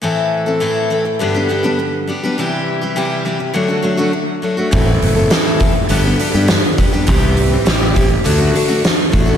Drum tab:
HH |--------|--------|oooooooo|oooooooo|
SD |--------|--------|--o---o-|--o---o-|
BD |--------|--------|o--o---o|o--o---o|